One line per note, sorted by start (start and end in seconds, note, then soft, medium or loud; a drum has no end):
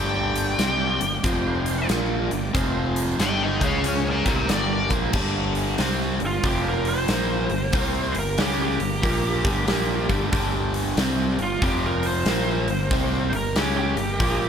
0.00 0.55 G1 medium
0.00 0.58 G2 medium
0.00 0.58 D3 loud
0.00 0.58 G3 loud
0.00 1.23 A#3 medium
0.00 1.24 D4 medium
0.00 1.24 G4 medium
0.00 1.87 D5 medium
0.00 1.87 G5 loud
0.36 closed hi-hat medium
0.58 0.98 C2 medium
0.58 0.99 C3 medium
0.58 1.00 G3 medium
0.58 1.00 C4 medium
0.58 snare loud
0.58 closed hi-hat medium
1.01 1.23 G1 medium
1.01 1.20 G2 medium
1.01 1.20 D3 medium
1.01 closed hi-hat medium
1.23 1.85 F1 medium
1.23 1.88 F2 medium
1.23 1.88 C3 medium
1.23 1.88 F3 medium
1.23 1.90 C4 medium
1.23 1.90 F4 medium
1.23 1.90 C5 medium
1.23 kick loud
1.23 closed hi-hat medium
1.66 closed hi-hat medium
1.88 2.28 A#1 medium
1.88 2.29 A#2 medium
1.88 2.30 F3 loud
1.88 2.30 A#3 medium
1.88 2.55 A#3 medium
1.88 2.54 D4 medium
1.88 2.54 G4 medium
1.88 2.55 D5 medium
1.88 snare loud
1.88 closed hi-hat medium
2.31 2.53 G1 medium
2.31 2.50 G2 medium
2.31 2.50 D3 medium
2.31 closed hi-hat medium
2.53 3.16 F1 medium
2.53 3.18 F2 medium
2.53 3.19 C3 loud
2.53 3.19 F3 loud
2.53 3.19 C4 medium
2.53 3.19 F4 medium
2.53 3.19 C5 medium
2.53 kick loud
2.53 closed hi-hat medium
2.96 closed hi-hat medium
3.19 3.58 G1 medium
3.19 3.60 G2 medium
3.19 3.60 D3 medium
3.19 3.60 G3 medium
3.19 3.41 A#4 medium
3.19 3.42 D5 medium
3.19 3.42 G5 loud
3.19 snare loud
3.19 closed hi-hat medium
3.43 3.62 A#4 medium
3.43 3.63 D#5 medium
3.43 3.64 G5 medium
3.60 4.22 C#2 medium
3.60 4.25 C#3 medium
3.60 4.25 G#3 medium
3.60 4.25 C#4 medium
3.60 4.26 G#4 medium
3.60 3.83 G#4 medium
3.60 3.84 F5 medium
3.60 kick medium
3.60 closed hi-hat medium
3.65 3.84 C#5 medium
3.84 4.05 G#4 medium
3.84 4.06 C#5 medium
3.84 4.07 F5 medium
3.84 closed hi-hat medium
4.08 4.27 F4 medium
4.08 4.28 A#4 medium
4.08 4.28 D5 medium
4.26 4.48 C2 medium
4.26 4.49 C3 medium
4.26 4.83 G3 medium
4.26 4.49 G3 medium
4.26 5.14 A#3 medium
4.26 4.49 C4 medium
4.26 4.95 D4 medium
4.26 4.49 F4 medium
4.26 5.14 A#4 medium
4.26 kick loud
4.26 closed hi-hat medium
4.30 4.49 A#4 medium
4.30 4.50 D5 medium
4.48 4.88 G1 medium
4.48 4.90 G2 medium
4.48 4.90 D3 medium
4.48 4.90 G3 loud
4.48 4.91 D5 medium
4.48 snare loud
4.48 closed hi-hat medium
4.53 4.90 A#4 medium
4.85 5.10 G3 medium
4.85 5.11 A3 medium
4.90 5.13 A#1 medium
4.90 5.13 A#2 medium
4.90 5.14 F3 medium
4.90 5.14 A#3 loud
4.90 5.12 B3 medium
4.90 5.14 C4 medium
4.90 kick medium
4.90 closed hi-hat medium
4.96 5.14 D4 medium
4.96 5.17 E4 medium
5.02 5.18 F4 medium
5.02 5.20 G4 medium
5.08 5.21 A4 medium
5.08 5.22 B4 medium
5.13 5.75 G1 medium
5.13 5.78 G2 medium
5.13 5.78 D3 loud
5.13 5.78 G3 loud
5.13 6.44 G3 medium
5.13 6.43 A#3 medium
5.13 6.43 D4 medium
5.13 6.44 A#4 medium
5.13 5.24 C5 medium
5.13 kick loud
5.13 crash loud
5.55 open hi-hat medium
5.78 6.18 C2 medium
5.78 6.19 C3 medium
5.78 6.20 G3 medium
5.78 6.20 C4 medium
5.78 snare loud
5.78 open hi-hat medium
6.00 snare soft
6.20 6.43 G1 medium
6.20 6.39 G2 medium
6.20 6.39 D3 medium
6.20 open hi-hat soft
6.26 6.46 F4 medium
6.43 7.05 F1 medium
6.43 7.08 F2 medium
6.43 7.08 C3 medium
6.43 7.08 F3 loud
6.43 7.08 C4 medium
6.43 7.08 F4 medium
6.43 6.67 G4 medium
6.43 7.08 C5 medium
6.43 kick medium
6.43 open hi-hat medium
6.68 6.88 A#4 medium
6.85 8.14 C5 loud
6.85 open hi-hat medium
7.08 7.47 A#1 medium
7.08 7.49 A#2 medium
7.08 7.49 F3 loud
7.08 9.65 A#3 medium
7.08 7.50 A#3 loud
7.08 9.65 G4 medium
7.08 9.65 A#4 medium
7.08 snare loud
7.08 open hi-hat medium
7.49 7.72 G1 medium
7.49 7.69 G2 medium
7.49 7.69 D3 medium
7.49 open hi-hat soft
7.73 8.12 C2 medium
7.73 8.14 C3 loud
7.73 8.14 G3 loud
7.73 8.14 C4 loud
7.73 kick loud
7.73 open hi-hat medium
8.15 8.37 G1 medium
8.15 8.34 G2 medium
8.15 8.34 D3 medium
8.15 open hi-hat medium
8.19 8.39 A#4 medium
8.38 8.77 C#2 medium
8.38 8.79 C#3 medium
8.38 8.79 G#3 medium
8.38 8.79 C#4 loud
8.38 8.61 G4 medium
8.38 snare loud
8.38 open hi-hat medium
8.62 10.51 G4 medium
8.79 9.02 G1 medium
8.79 8.99 G2 medium
8.79 8.99 D3 medium
8.79 open hi-hat medium
9.02 9.42 A#1 medium
9.02 9.43 A#2 medium
9.02 9.44 F3 medium
9.02 9.44 A#3 medium
9.02 kick medium
9.02 open hi-hat medium
9.44 9.67 G1 medium
9.44 9.67 G2 medium
9.44 9.67 D3 medium
9.44 9.68 G3 loud
9.44 kick loud
9.44 open hi-hat medium
9.68 10.07 A#1 medium
9.68 10.08 A#2 medium
9.68 10.09 F3 medium
9.68 10.09 A#3 loud
9.68 11.61 D4 medium
9.68 11.60 G4 medium
9.68 11.61 A#4 medium
9.68 11.61 D5 medium
9.68 snare loud
9.68 open hi-hat medium
10.09 10.31 G1 loud
10.09 10.31 G2 medium
10.09 10.32 D3 medium
10.09 10.32 G3 loud
10.09 kick medium
10.09 open hi-hat soft
10.32 10.94 G1 medium
10.32 10.97 G2 loud
10.32 10.97 D3 loud
10.32 10.97 G3 loud
10.32 kick loud
10.32 open hi-hat medium
10.74 open hi-hat medium
10.97 11.36 C2 medium
10.97 11.38 C3 medium
10.97 11.38 G3 medium
10.97 11.39 C4 loud
10.97 snare loud
10.97 open hi-hat medium
11.38 11.60 G1 medium
11.38 11.58 G2 medium
11.38 11.58 D3 medium
11.38 open hi-hat soft
11.43 11.63 F4 medium
11.62 12.23 F1 medium
11.62 12.26 F2 medium
11.62 12.26 C3 medium
11.62 12.26 F3 loud
11.62 12.27 C4 medium
11.62 12.27 F4 medium
11.62 11.84 G4 medium
11.62 12.26 C5 medium
11.62 kick loud
11.62 open hi-hat medium
11.86 12.06 A#4 medium
12.03 13.31 C5 medium
12.03 open hi-hat medium
12.26 12.65 A#1 medium
12.26 12.67 A#2 medium
12.26 12.67 F3 loud
12.26 14.49 A#3 medium
12.26 12.68 A#3 loud
12.26 14.49 G4 medium
12.26 14.49 A#4 medium
12.26 snare loud
12.26 open hi-hat medium
12.67 12.89 G1 medium
12.67 12.87 G2 medium
12.67 12.87 D3 medium
12.67 open hi-hat medium
12.91 13.30 C2 medium
12.91 13.31 C3 medium
12.91 13.32 G3 loud
12.91 13.32 C4 loud
12.91 kick loud
12.91 open hi-hat medium
13.31 13.53 G1 medium
13.31 13.51 G2 medium
13.31 13.51 D3 medium
13.31 open hi-hat medium
13.36 13.56 A#4 medium
13.55 13.94 C#2 medium
13.55 13.96 C#3 medium
13.55 13.96 G#3 medium
13.55 13.97 C#4 medium
13.55 13.76 G4 medium
13.55 snare loud
13.55 open hi-hat medium
13.77 14.49 G4 medium
13.96 14.18 G1 medium
13.96 14.16 G2 medium
13.96 14.16 D3 medium
13.96 open hi-hat medium
14.20 14.49 A#1 medium
14.20 14.49 A#2 medium
14.20 14.49 F3 medium
14.20 14.49 A#3 loud
14.20 kick loud
14.20 open hi-hat medium